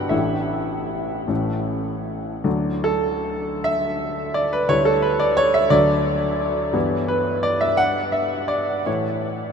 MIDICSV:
0, 0, Header, 1, 2, 480
1, 0, Start_track
1, 0, Key_signature, 2, "major"
1, 0, Tempo, 787402
1, 69, Time_signature, 6, 3, 24, 8
1, 1989, Tempo, 746269
1, 2469, Tempo, 687285
1, 5349, Tempo, 754717
1, 6233, End_track
2, 0, Start_track
2, 0, Title_t, "Grand piano"
2, 0, Program_c, 0, 0
2, 0, Control_c, 0, 64, 127
2, 0, Note_on_c, 0, 31, 50
2, 0, Note_on_c, 0, 43, 52
2, 0, Note_on_c, 0, 52, 41
2, 0, Note_on_c, 0, 59, 40
2, 0, Note_on_c, 0, 64, 38
2, 0, Note_on_c, 0, 66, 62
2, 0, Note_on_c, 0, 67, 65
2, 0, Note_on_c, 0, 71, 62
2, 0, Note_on_c, 0, 78, 83
2, 0, Note_on_c, 0, 79, 80
2, 0, Note_on_c, 0, 83, 83
2, 57, Note_on_c, 0, 76, 75
2, 62, Note_off_c, 0, 52, 0
2, 62, Note_on_c, 0, 52, 39
2, 63, Note_on_c, 0, 33, 47
2, 64, Note_on_c, 0, 45, 48
2, 64, Note_on_c, 0, 57, 39
2, 65, Note_off_c, 0, 64, 0
2, 65, Note_on_c, 0, 64, 50
2, 66, Note_off_c, 0, 78, 0
2, 68, Note_on_c, 0, 62, 37
2, 83, Control_c, 0, 64, 0
2, 85, Note_off_c, 0, 43, 0
2, 85, Note_off_c, 0, 71, 0
2, 85, Note_off_c, 0, 83, 0
2, 87, Note_off_c, 0, 67, 0
2, 87, Note_off_c, 0, 79, 0
2, 88, Note_off_c, 0, 59, 0
2, 88, Note_off_c, 0, 66, 0
2, 89, Note_off_c, 0, 31, 0
2, 203, Control_c, 0, 64, 127
2, 762, Note_off_c, 0, 52, 0
2, 762, Note_off_c, 0, 57, 0
2, 763, Note_off_c, 0, 64, 0
2, 765, Note_off_c, 0, 33, 0
2, 765, Note_off_c, 0, 45, 0
2, 765, Note_off_c, 0, 62, 0
2, 777, Note_on_c, 0, 45, 50
2, 779, Note_on_c, 0, 33, 45
2, 780, Note_on_c, 0, 52, 35
2, 783, Note_off_c, 0, 76, 0
2, 784, Note_on_c, 0, 57, 37
2, 786, Note_on_c, 0, 61, 39
2, 803, Control_c, 0, 64, 0
2, 902, Control_c, 0, 64, 127
2, 1467, Note_off_c, 0, 52, 0
2, 1469, Note_off_c, 0, 45, 0
2, 1470, Note_off_c, 0, 33, 0
2, 1470, Note_off_c, 0, 57, 0
2, 1470, Note_off_c, 0, 61, 0
2, 1488, Note_on_c, 0, 54, 46
2, 1489, Note_on_c, 0, 38, 56
2, 1491, Note_on_c, 0, 62, 47
2, 1492, Note_on_c, 0, 57, 48
2, 1506, Control_c, 0, 64, 0
2, 1633, Control_c, 0, 64, 127
2, 1730, Note_on_c, 0, 69, 85
2, 2233, Note_off_c, 0, 69, 0
2, 2233, Note_on_c, 0, 76, 96
2, 2703, Note_on_c, 0, 74, 87
2, 2709, Note_off_c, 0, 76, 0
2, 2829, Note_off_c, 0, 74, 0
2, 2831, Note_on_c, 0, 71, 87
2, 2921, Note_off_c, 0, 38, 0
2, 2921, Note_off_c, 0, 54, 0
2, 2922, Note_off_c, 0, 62, 0
2, 2923, Note_off_c, 0, 57, 0
2, 2944, Note_on_c, 0, 38, 54
2, 2944, Note_on_c, 0, 55, 46
2, 2944, Note_on_c, 0, 73, 105
2, 2946, Note_on_c, 0, 57, 51
2, 2948, Note_on_c, 0, 64, 47
2, 2953, Note_off_c, 0, 71, 0
2, 2967, Control_c, 0, 64, 0
2, 3059, Note_on_c, 0, 69, 86
2, 3068, Note_off_c, 0, 73, 0
2, 3087, Control_c, 0, 64, 127
2, 3178, Note_on_c, 0, 71, 90
2, 3184, Note_off_c, 0, 69, 0
2, 3298, Note_on_c, 0, 74, 93
2, 3303, Note_off_c, 0, 71, 0
2, 3418, Note_on_c, 0, 73, 108
2, 3423, Note_off_c, 0, 74, 0
2, 3538, Note_on_c, 0, 76, 99
2, 3543, Note_off_c, 0, 73, 0
2, 3642, Note_off_c, 0, 38, 0
2, 3642, Note_off_c, 0, 55, 0
2, 3643, Note_off_c, 0, 57, 0
2, 3644, Note_off_c, 0, 64, 0
2, 3652, Note_on_c, 0, 74, 100
2, 3653, Note_on_c, 0, 38, 66
2, 3654, Note_on_c, 0, 54, 54
2, 3658, Note_on_c, 0, 57, 52
2, 3660, Note_on_c, 0, 62, 52
2, 3663, Note_off_c, 0, 76, 0
2, 3681, Control_c, 0, 64, 0
2, 3785, Control_c, 0, 64, 127
2, 4355, Note_off_c, 0, 38, 0
2, 4355, Note_off_c, 0, 54, 0
2, 4357, Note_off_c, 0, 57, 0
2, 4358, Note_off_c, 0, 62, 0
2, 4370, Note_on_c, 0, 43, 60
2, 4372, Note_on_c, 0, 52, 56
2, 4375, Note_on_c, 0, 59, 56
2, 4376, Note_off_c, 0, 74, 0
2, 4378, Note_on_c, 0, 64, 55
2, 4395, Control_c, 0, 64, 0
2, 4512, Control_c, 0, 64, 127
2, 4616, Note_on_c, 0, 71, 87
2, 4858, Note_on_c, 0, 74, 95
2, 4861, Note_off_c, 0, 71, 0
2, 4982, Note_off_c, 0, 74, 0
2, 4982, Note_on_c, 0, 76, 90
2, 5098, Note_on_c, 0, 78, 106
2, 5104, Note_off_c, 0, 76, 0
2, 5119, Control_c, 0, 64, 0
2, 5226, Control_c, 0, 64, 127
2, 5341, Note_on_c, 0, 76, 82
2, 5344, Note_off_c, 0, 78, 0
2, 5570, Note_on_c, 0, 74, 83
2, 5572, Note_off_c, 0, 76, 0
2, 5782, Note_off_c, 0, 43, 0
2, 5783, Note_off_c, 0, 52, 0
2, 5784, Note_off_c, 0, 59, 0
2, 5786, Note_off_c, 0, 64, 0
2, 5812, Note_off_c, 0, 74, 0
2, 5813, Note_on_c, 0, 45, 41
2, 5813, Note_on_c, 0, 73, 65
2, 5814, Note_on_c, 0, 57, 40
2, 5815, Note_on_c, 0, 52, 38
2, 5820, Note_on_c, 0, 64, 38
2, 5828, Control_c, 0, 64, 0
2, 5921, Control_c, 0, 64, 127
2, 6233, Note_off_c, 0, 45, 0
2, 6233, Note_off_c, 0, 52, 0
2, 6233, Note_off_c, 0, 57, 0
2, 6233, Note_off_c, 0, 64, 0
2, 6233, Note_off_c, 0, 73, 0
2, 6233, End_track
0, 0, End_of_file